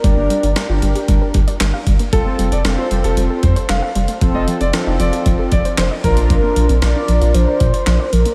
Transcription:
<<
  \new Staff \with { instrumentName = "Grand piano" } { \time 4/4 \key f \mixolydian \tempo 4 = 115 r1 | a'16 r8 d''16 r16 c''16 r16 a'16 r8 c''8 f''8. r16 | r16 ees''16 r16 d''16 r8 d''8 r8 d''8 c''16 r16 bes'16 r16 | r1 | }
  \new Staff \with { instrumentName = "Soft synth lead" } { \time 4/4 \key f \mixolydian d''4. r2 r8 | r1 | r1 | bes'4 d''4 c''4. bes'8 | }
  \new Staff \with { instrumentName = "Analog polysynth" } { \time 4/4 \key f \mixolydian <d' g' bes'>8. r16 <d' g' bes'>4. r4. | <c' f' a'>8. r16 <c' f' a'>4. r4. | <c' f' a'>8. r16 <c' f' a'>4. r4 <d' f' bes'>8~ | <d' f' bes'>8 r8 <d' f' bes'>4. r4. | }
  \new Staff \with { instrumentName = "Synth arpeggio sound" } { \clef bass \time 4/4 \key f \mixolydian g16 bes16 g16 d'16 g16 f'16 g16 g'16 g16 bes'16 g16 d''16 g16 f''16 g16 bes16 | g16 a16 g16 c'16 g16 f'16 g16 g'16 g16 a'16 g16 c''16 g16 f''16 g16 a16 | f16 a16 f16 c'16 f16 ees'16 f16 f'16 f16 a'16 f16 c''16 f16 ees''16 f16 bes16 | f16 bes16 f16 c'16 f16 d'16 f16 f'16 f16 bes'16 f16 c''16 f16 d''16 f16 bes16 | }
  \new Staff \with { instrumentName = "Analog synth bass" } { \clef bass \time 4/4 \key f \mixolydian g,,16 g,,16 r16 g,,16 r16 g,,16 g,,16 r16 g,,16 r16 g,,16 r16 g,,16 r16 g,,16 r16 | f,,16 r16 f,,16 f,,16 f,,16 r16 f,,16 f,,16 f,,16 r16 f,16 r16 f,,16 r16 f,,16 r16 | f,,16 f,,16 r16 f,,16 r16 f,,16 f,,16 r16 f,,16 r16 f,,16 r16 f,,16 r16 bes,,8~ | bes,,16 r16 bes,,16 bes,,16 bes,,16 r16 bes,,16 bes,,16 bes,,16 r16 bes,16 r16 bes,,16 r16 bes,,16 r16 | }
  \new DrumStaff \with { instrumentName = "Drums" } \drummode { \time 4/4 <hh bd>8 hh16 hh16 <hh sn>8 hh16 hh16 <hh bd>8 <hh bd>16 hh16 <hc hh sn>8 <hh bd>16 hh16 | <hh bd>8 hh16 hh16 <hh sn>8 hh16 hh16 hh8 <hh bd>16 hh16 <hc hh sn>8 hh16 hh16 | <hh bd>8 hh16 hh16 <hh sn>8 hh16 hh16 <hh bd>8 <hh bd>16 hh16 <hc hh sn>8 <hh bd>16 hh16 | <hh bd>8 hh16 hh16 <hh sn>8 hh16 hh16 hh8 <hh bd>16 hh16 <hc hh sn>8 hh16 hh16 | }
>>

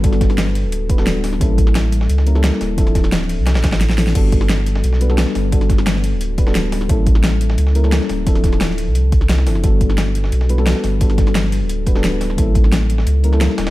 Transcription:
<<
  \new Staff \with { instrumentName = "FM electric piano" } { \time 4/4 \key g \major \tempo 4 = 175 <g b d' fis' a'>2~ <g b d' fis' a'>8 <g b d' fis' b'>16 <g b d' fis' a'>16 r4 | <g bes cis' e' a'>2~ <g bes cis' e' a'>8 <g bes cis' e' bes'>16 <g bes cis' e' a'>16 r4 | <f c' d' e' a'>2~ <f c' d' e' a'>8 r4 <f c' d' e' a'>8 | <g b d' fis' a'>2~ <g b d' fis' a'>8 <g b d' fis' b'>16 <g b d' fis' a'>16 r4 |
<g b d' fis' a'>2~ <g b d' fis' a'>8 <g b d' fis' b'>16 <g b d' fis' a'>16 r4 | <g bes cis' e' a'>2~ <g bes cis' e' a'>8 <g bes cis' e' bes'>16 <g bes cis' e' a'>16 r4 | <f c' d' e' a'>2~ <f c' d' e' a'>8 r4 <f c' d' e' a'>8 | <g b d' fis' a'>2~ <g b d' fis' a'>8 <g b d' fis' b'>16 <g b d' fis' a'>16 r4 |
<g b d' fis' a'>2~ <g b d' fis' a'>8 <g b d' fis' b'>16 <g b d' fis' a'>16 r4 | <g bes cis' e' a'>2~ <g bes cis' e' a'>8 <g bes cis' e' bes'>16 <g bes cis' e' a'>16 r4 | }
  \new Staff \with { instrumentName = "Sub bass" } { \clef bass \time 4/4 \key g \major g,,4.~ g,,16 d,,2~ d,,16 | a,,2 cis,4~ cis,16 r16 d,,8~ | d,,4.~ d,,16 c,8 a,,16 a,,4. | g,,2 b,,4~ b,,16 r16 g,,8~ |
g,,4.~ g,,16 d,,2~ d,,16 | a,,2 cis,4~ cis,16 r16 d,,8~ | d,,4.~ d,,16 c,4.~ c,16 g,,16 f,,16 | g,,2 b,,4~ b,,16 r16 g,,8~ |
g,,4.~ g,,16 d,,2~ d,,16 | a,,2 cis,4~ cis,16 r16 d,,8 | }
  \new DrumStaff \with { instrumentName = "Drums" } \drummode { \time 4/4 <hh bd>16 <hh sn>16 <hh bd sn>16 <hh sn>16 <hh sn>16 sn16 <hh hho>8 hh8 <hh bd>16 sn16 <hh sn>8 <hh hho sn>16 sn16 | <hh bd>8 <hh bd>16 sn16 <hh sn>8 hh16 sn16 hh16 sn16 hh16 sn16 <hh sn>16 sn16 <hh hho sn>8 | <hh bd>16 <hh sn>16 <hh bd sn>16 <hh sn>16 <hh sn>16 sn16 <hh hho>8 <hh sn>16 <hh sn>16 <hh bd sn>16 <hh sn>16 <hh sn>16 sn16 <hh hho sn>16 sn16 | <cymc hh bd>8 <hh bd>16 sn16 <hh sn>8 hh16 sn16 hh16 sn16 hh16 sn16 <hh sn>16 sn16 <hh hho sn>8 |
<hh bd>16 <hh sn>16 <hh bd sn>16 <hh sn>16 <hh sn>16 sn16 <hh hho>8 hh8 <hh bd>16 sn16 <hh sn>8 <hh hho sn>16 sn16 | <hh bd>8 <hh bd>16 sn16 <hh sn>8 hh16 sn16 hh16 sn16 hh16 sn16 <hh sn>16 sn16 <hh hho sn>8 | <hh bd>16 <hh sn>16 <hh bd sn>16 <hh sn>16 <hh sn>16 sn16 <hh hho>8 hh8 <hh bd>16 sn16 <hh sn>16 sn16 <hh hho sn>16 sn16 | <hh bd>8 <hh bd>16 sn16 <hh sn>8 hh16 sn16 hh16 sn16 hh16 sn16 <hh sn>16 sn16 <hh hho sn>8 |
<hh bd>16 <hh sn>16 <hh bd sn>16 <hh sn>16 <hh sn>16 sn16 <hh hho>8 hh8 <hh bd>16 sn16 <hh sn>8 <hh hho sn>16 sn16 | <hh bd>8 <hh bd>16 sn16 <hh sn>8 hh16 sn16 hh8 hh16 sn16 <hh sn>16 sn16 <hh hho sn>16 <hh sn>16 | }
>>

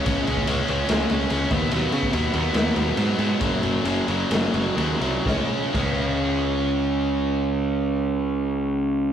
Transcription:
<<
  \new Staff \with { instrumentName = "Overdriven electric guitar" } { \clef bass \time 4/4 \key ces \lydian \tempo 4 = 131 <des aes des'>8 <des aes des'>8 <des aes des'>8 <des aes des'>8 <des aes des'>8 <des aes des'>8 <des aes des'>8 <ces ges ces'>8 | <ces ges ces'>8 <ces ges ces'>8 <ces ges ces'>8 <ces ges ces'>8 <ces ges ces'>8 <ces ges ces'>8 <ces ges ces'>8 <ces ges ces'>8 | <ges, des ges>8 <ges, des ges>8 <ges, des ges>8 <ges, des ges>8 <ges, des ges>8 <ges, des ges>8 <ges, des ges>8 <ges, des ges>8 | <des aes des'>8 r8 <des aes des'>2.~ |
<des aes des'>1 | }
  \new Staff \with { instrumentName = "Picked electric bass" } { \clef bass \time 4/4 \key ces \lydian des,8 des,8 des,8 des,8 des,8 des,8 des,8 ees,8 | ees,8 des8 ees,8 ees,8 ees,8 ees,8 aes,8 aes,8 | ges,,8 ges,,8 ges,,8 ges,,8 ges,,8 ges,,8 ees,8 c,8 | des,8 r8 des,2.~ |
des,1 | }
  \new DrumStaff \with { instrumentName = "Drums" } \drummode { \time 4/4 <bd cymr>8 cymr16 bd16 cymr8 cymr8 <cymr sn>8 cymr8 cymr8 <bd cymr sn>8 | cymr8 cymr16 bd16 cymr8 cymr8 <cymr sn>8 cymr8 cymr8 cymr8 | <bd cymr>8 cymr8 cymr8 cymr8 <cymr sn>8 cymr8 cymr8 cymr8 | <bd sn>4 <cymc bd>4 r4 r4 |
r4 r4 r4 r4 | }
>>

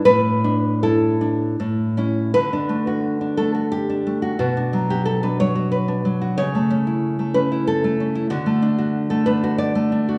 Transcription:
\new Staff \with { instrumentName = "Nylon-string guitar" } { \time 3/4 \key d \major \tempo 4 = 90 << { b'4 a'4 r4 | b'4. a'8 g'4 | fis'8. g'16 a'16 b'16 cis''8 b'4 | cis''4. b'8 a'4 |
fis'4~ fis'16 a'16 b'8 d''4 | } \\ { a,8 d'8 e'8 d'8 a,8 <cis' e'>8 | d16 d'16 a16 fis'8 d'16 a16 fis'8 d'16 a16 fis'16 | b,16 d'16 fis16 fis'8 d'16 fis16 fis'8 d'16 fis16 fis'16 | cis16 a16 cis'16 e'8 a16 cis'16 e'8 a16 cis'16 e'16 |
d16 a16 d'16 fis'8 a16 d'16 fis'8 a16 d'16 fis'16 | } >> }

